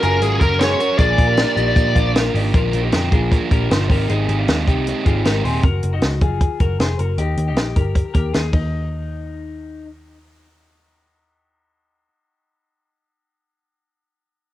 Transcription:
0.01 F#1 C#4 F4 F#4 G#4 A#4, closed hi-hat
0.21 G#1 F#3 G#3 C#4 F#4 G#4 A#4, closed hi-hat
0.40 F#1 C#4 F#4 A#4, kick, closed hi-hat
0.59 G#3 C#4 F#4 G#4 A#4 C5 C#5, snare, closed hi-hat
0.79 C#4 F#4 A#4, closed hi-hat
0.97 A#1 A#2 F3 A#3 D4 F4 G#4 A#4 D5, kick, closed hi-hat
1.18 A#1 A#3 D4 F4 A#4, kick, closed hi-hat
1.27 G4 A#4
1.37 A#3 D4 F4 A#4, snare, closed hi-hat
1.55 A#1 D4 D#4 F4 G4 A#4, closed hi-hat
1.61 A#3
1.76 A#2 F3 A#3 D4 F4 A#4, kick, closed hi-hat
1.95 A#1 A#3 D4 F4 A#4, kick, closed hi-hat
2.14 A#3 D4 F4 A#4, snare, closed hi-hat
2.34 G#1 A#3 D4 D#4 F4 G4 A#4, open hi-hat
2.53 A#1 A#2 D3 F3 A#3 D4 F4 A#4, kick, closed hi-hat
2.72 A#1 F3 A#3 D4 A#4, closed hi-hat
2.83 D#4 G4
2.91 F2 A#2 D3 F3 A#3 D4 A#4, snare, closed hi-hat
3.12 A#1 F3 A#3 D4 F4 G#4 A#4, kick, closed hi-hat
3.31 F3 A#3 D4 A#4, kick, closed hi-hat
3.50 A#1 F3 A#3 D4 G4 A#4, kick, closed hi-hat
3.70 G1 A#2 D3 F3 A#3 D4 F4 A#4 C5, snare, closed hi-hat
3.89 G#1 C4 D#4 G4 A#4, kick, open hi-hat
4.08 G#1 G#3 C4 D#4 G4 G#4, closed hi-hat
4.28 G#1 C4 D#4 G4, closed hi-hat
4.39 D4 F4
4.47 D#2 G#3 C4 D#4 G4, snare, closed hi-hat
4.67 C2 C4 D#4 G4, kick, closed hi-hat
4.87 G#3 C4 D#4 G4, closed hi-hat
5.06 G#1 C4 D#4 F4 G4 G#4, kick, closed hi-hat
5.25 G#1 G#3 C4 D#4 G4 A#4, snare, closed hi-hat
5.44 D#1 C4 D#4 G4 G#4 C5, open hi-hat
5.63 F#1 F#4 A#4, kick, closed hi-hat
5.83 F#1, closed hi-hat
5.93 D#4 F#4
6.02 C#2, snare, closed hi-hat
6.21 F#1 F4 G#4, kick, closed hi-hat
6.41 kick, closed hi-hat
6.60 F#1 F#4 A#4, kick, closed hi-hat
6.80 F1 G#4 C5, snare, closed hi-hat
6.99 F#1 F#4 A#4, closed hi-hat
7.18 D#2 D#4 G4, closed hi-hat
7.37 D#2, closed hi-hat
7.48 D#4 G4
7.56 A#1, snare, closed hi-hat
7.76 G1 G4 A#4, kick, closed hi-hat
7.95 kick, closed hi-hat
8.14 D#2 G4 A#4, kick, closed hi-hat
8.33 D#2 D#4 G#4, snare, closed hi-hat
8.53 D#2 D#4, kick, ride

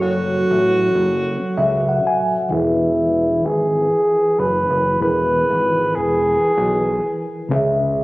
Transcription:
Already playing: F#3 F#4 A4 C#5
0.01 F#1 F#4
0.51 A1
0.95 F#1
1.57 C#2 E5
1.89 F#5
2.07 G#5
2.49 E1 E3 E4 G#4
2.54 B4
3.45 G#1 G#4
4.39 F#1 B4
4.70 F#1
4.99 E1 E3 E4 G#4 B4
5.04 A#4
5.10 B4
5.51 G#1
5.95 E1 G#4
6.57 B1
7.49 C#2 C#3 C#4 G#4
7.54 E5

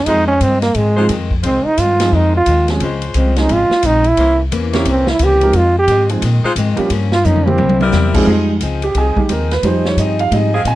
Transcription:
0.06 F2 D#3 F3 G#3 C4 D#4 F4 G#4 C5, kick, ride
0.11 C4
0.28 C#4
0.41 F2 G2 D#3 G#3 C4, kick, hi-hat pedal, ride
0.62 A#3, snare, ride
0.74 F2 G#2 D#3 G#3, kick, ride
0.79 C4
0.96 F3 G#3 C4 D#4 F4 G#4 C5
1.09 F2 D#3 G#3 C4, kick, hi-hat pedal, ride
1.31 kick
1.42 C2 F2 D#3 G#3 C4 D#4 F4 G#4 C5, kick, ride
1.64 D#4, muted upright bass stroke
1.78 F2 G2 D#3 G#3 C4 F4, kick, hi-hat pedal, ride
2.00 F3 G#3 C4 D#4 G#4, snare, ride
2.12 F2 D#3 G#3 C4 D#4, kick
2.37 F4
2.46 D#2 F2 D#3 G#3 C4, kick, hi-hat pedal, ride
2.68 F3 G#3 C4 C#4 G#4, snare, ride
2.80 C#2 C#3 F3 G#3 C4 C#4 F4 C5, kick, ride
3.02 ride
3.14 C2 C#3 F3 G#3 C4, kick, hi-hat pedal, ride
3.36 F3 G#3 C4 C#4 D#4 G#4, snare, ride
3.48 G#1 C#3 F3 G#3 C4, kick, ride
3.53 F4
3.69 muted upright bass stroke, snare
3.83 A#1 C#3 F3 G#3 C4 D#4, kick, hi-hat pedal, ride
4.04 ride
4.08 E4
4.17 C2 C3 E3 A#3 C#4 E4 C5, kick, ride
4.51 E2 C3 E3 A#3 C#4, kick, hi-hat pedal, ride
4.73 E3 A#3 C4 C#4 E4 G4 C#5, snare, ride
4.85 C2 C3 E3 A#3 C#4, kick, ride
4.90 C4
5.07 E4, snare
5.19 C#2 C3 E3 A#3 C#4, kick, hi-hat pedal, ride
5.24 G4
5.41 F3 G#3 C4 D#4 A#4, ride
5.53 F2 D#3 G#3 C4 F4, kick, ride
5.79 G4
5.87 F2 G#2 D#3 G#3, kick, hi-hat pedal, ride
5.91 C4
6.09 F3 G#3 C4 D#4 G#4, ride
6.22 F2 A#2 D#3 G#3 C4, kick, ride
6.44 G#3 D#4 F4 C5, muted upright bass stroke
6.56 F2 G#2 D#3 G#3 C4, kick, hi-hat pedal, ride
6.76 F3 G3 A#3 C#4 G4, muted upright bass stroke, ride
6.90 G2 F3 A#3 C#4, kick, ride
7.12 F4, snare
7.23 F2 G2 F3 A#3 C#4 D#4, hi-hat pedal, high tom
7.36 mid tom
7.45 E3 G3 A#3 C4 G4, mid tom
7.58 C2 C3 G3 A#3 E4, high tom
7.69 high tom
7.81 G3 C4 E4 A#4, high tom
7.92 E2 C3 G3 A#3 E4, snare, hi-hat pedal
8.14 F3 G#3 C4 D#4 G#4, kick, crash
8.26 F2 F3 G3 G#3 C4 D#4 G#4
8.60 C#2 F3 C4 D#4 G#4, kick, hi-hat pedal, ride
8.82 G4, ride
8.95 C2 F3 C4 D#4 G#4, kick, ride
9.16 G3 G#3 D#4 G4, muted upright bass stroke, kick
9.29 D#2 F3 C4 D#4 G#4 A#4, hi-hat pedal, ride
9.51 B4, snare, ride
9.63 F2 F3 G3 C4 D#4 G#4 C5, kick, ride
9.85 C#5, snare
9.97 G2 F3 C4 D#4 G#4 D#5, kick, hi-hat pedal, ride
10.19 F5, ride
10.31 G#2 F3 G3 G#3 C4 D#4 G#4 D#5, kick, ride
10.54 F3 C4 D#4 G#4 F5
10.64 A#2 F3 C4 D#4 G#4 G#5, kick, hi-hat pedal, ride

